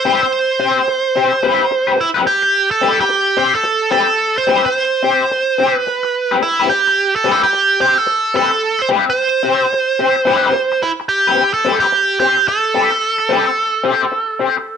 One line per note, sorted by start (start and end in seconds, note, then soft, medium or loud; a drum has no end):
0.00 0.22 C5 loud
0.05 0.26 C4 loud
0.05 0.21 G4 medium
0.05 0.20 B4 loud
0.21 2.05 C5 loud
0.21 muted clean electric guitar stroke soft
0.60 0.80 C4 medium
0.60 0.80 G4 medium
0.60 0.81 C5 medium
0.88 muted clean electric guitar stroke soft
1.16 1.33 C4 medium
1.16 1.32 G4 medium
1.16 1.32 C5 medium
1.32 muted clean electric guitar stroke medium
1.43 1.63 C4 medium
1.43 1.64 G4 loud
1.43 1.64 B4 loud
1.71 muted clean electric guitar stroke soft
1.87 1.97 C4 medium
1.87 1.97 G4 medium
1.87 1.98 B4 medium
1.98 2.08 E4 loud
1.98 muted clean electric guitar stroke soft
2.14 2.26 C4 medium
2.14 2.26 G4 medium
2.14 2.26 B4 loud
2.27 2.71 G4 loud
2.27 muted clean electric guitar stroke soft
2.42 muted clean electric guitar stroke medium
2.71 2.99 A4 medium
2.81 3.02 C4 medium
2.81 3.03 G4 loud
2.81 3.03 B4 loud
3.00 3.38 G4 loud
3.09 muted clean electric guitar stroke soft
3.37 3.54 C4 medium
3.37 3.53 G4 medium
3.37 3.54 G4 loud
3.37 3.53 C5 medium
3.54 3.91 A4 loud
3.54 muted clean electric guitar stroke medium
3.64 muted clean electric guitar stroke soft
3.91 4.09 C4 medium
3.91 4.07 G4 medium
3.91 4.38 A4 loud
3.91 4.06 B4 medium
4.07 muted clean electric guitar stroke medium
4.36 4.65 C5 loud
4.36 muted clean electric guitar stroke soft
4.47 4.68 C4 medium
4.47 4.63 G4 medium
4.47 4.62 B4 medium
4.63 5.76 C5 loud
4.63 muted clean electric guitar stroke soft
5.03 5.23 C4 medium
5.03 5.24 G4 medium
5.03 5.24 C5 medium
5.31 muted clean electric guitar stroke soft
5.58 5.75 C4 medium
5.58 5.75 G4 medium
5.58 5.75 C5 medium
5.75 6.38 B4 loud
5.75 muted clean electric guitar stroke soft
5.87 muted clean electric guitar stroke soft
6.03 muted clean electric guitar stroke medium
6.31 6.42 C4 medium
6.31 6.42 G4 medium
6.31 6.43 B4 medium
6.43 6.68 E4 medium
6.43 muted clean electric guitar stroke soft
6.60 6.71 C4 medium
6.60 6.71 G4 medium
6.60 6.71 B4 medium
6.69 7.14 G4 medium
6.69 muted clean electric guitar stroke soft
6.87 muted clean electric guitar stroke soft
7.16 7.31 A4 medium
7.24 7.44 C4 medium
7.24 7.44 G4 medium
7.24 7.45 B4 medium
7.32 7.41 A4 medium
7.43 7.80 G4 medium
7.53 muted clean electric guitar stroke soft
7.80 7.97 C4 medium
7.80 7.95 G4 medium
7.80 7.98 G4 medium
7.80 7.95 C5 medium
7.96 8.35 A4 medium
7.96 muted clean electric guitar stroke soft
8.07 muted clean electric guitar stroke soft
8.34 8.51 C4 medium
8.34 8.51 G4 medium
8.34 8.81 A4 loud
8.34 8.50 B4 medium
8.51 muted clean electric guitar stroke medium
8.79 8.89 C5 loud
8.79 muted clean electric guitar stroke soft
8.89 9.09 C4 medium
8.89 9.05 G4 medium
8.89 9.05 B4 loud
9.06 10.89 C5 loud
9.06 muted clean electric guitar stroke soft
9.43 9.64 C4 medium
9.43 9.64 G4 medium
9.43 9.65 C5 medium
9.73 muted clean electric guitar stroke soft
9.99 10.16 C4 medium
9.99 10.15 G4 medium
9.99 10.15 C5 medium
10.16 muted clean electric guitar stroke medium
10.25 10.52 C4 loud
10.25 10.53 G4 loud
10.25 10.53 B4 loud
10.55 muted clean electric guitar stroke soft
10.72 muted clean electric guitar stroke soft
10.82 10.90 E4 medium
10.82 muted clean electric guitar stroke medium
11.00 muted clean electric guitar stroke soft
11.09 11.53 G4 medium
11.27 11.44 C4 medium
11.27 11.43 G4 medium
11.27 11.43 B4 medium
11.54 11.79 A4 medium
11.65 11.85 C4 medium
11.65 11.85 G4 medium
11.65 11.85 B4 medium
11.80 12.18 G4 medium
11.92 muted clean electric guitar stroke soft
12.20 12.37 C4 medium
12.20 12.48 G4 loud
12.20 12.37 G4 medium
12.20 12.37 C5 medium
12.37 muted clean electric guitar stroke soft
12.48 14.77 A4 loud
12.48 muted clean electric guitar stroke soft
12.74 12.91 C4 medium
12.74 12.91 G4 medium
12.74 12.90 B4 medium
12.91 muted clean electric guitar stroke soft
13.18 muted clean electric guitar stroke soft
13.29 13.49 C4 loud
13.29 13.46 G4 medium
13.29 13.45 B4 medium
13.47 muted clean electric guitar stroke soft
13.84 14.04 C4 medium
13.84 14.04 G4 loud
13.84 14.05 C5 loud
14.12 muted clean electric guitar stroke soft
14.39 14.56 C4 medium
14.39 14.57 G4 medium
14.39 14.57 C5 medium
14.57 muted clean electric guitar stroke soft